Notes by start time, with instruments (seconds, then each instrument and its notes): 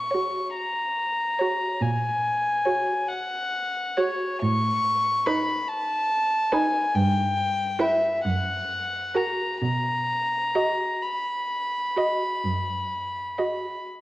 Already playing: cello A#2, violin C#6
0.11 viola F#4, violin C#5
0.55 violin A#5
1.39 viola F#4, violin C#5
1.81 cello A#2, violin G#5
2.65 viola F#4, violin C#5
3.08 violin F#5
3.97 viola F#4, violin C#5
4.42 cello A2, violin C#6
5.26 viola D#4, violin B4 B5
5.68 violin A5
6.52 viola D#4, violin B4 G#5
6.95 cello G2, violin G5
7.79 viola E4, violin B4 E5
8.25 cello F#2, violin F#5
9.14 viola F#4, violin A#4 A#5
9.62 cello B2, violin A#5
10.55 viola F#4, violin D#5
11.02 violin B5
11.96 viola F#4, violin D#5
12.44 cello F#2
13.38 viola F#4, violin D#5